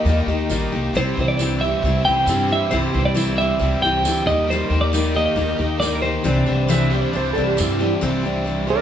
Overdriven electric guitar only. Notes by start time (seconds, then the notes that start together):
Already playing: D#3 A#3
0.07 D#4
0.27 D#3
0.51 A#3
0.72 D#3
0.93 C3
1.15 E3
1.37 E3
1.58 G3
1.81 C4
2.02 E3
2.26 G3
2.48 E3
2.72 C3
2.94 E3
3.14 E3
3.36 G3
3.59 C4
3.81 E3
4.03 G3
4.25 D#3
4.46 D#3
4.70 A#3
4.92 D#3
5.14 A#3
5.35 D#4
5.58 D#3
5.79 A#3
6.02 D#3
6.24 C3
6.47 E3
6.67 E3
6.90 G3
7.12 D4
7.35 E3
7.57 G3
7.79 E3
8.01 C3 E3 G3 C4 E4 C5
8.67 C3 E3 G3 C4 E4 C5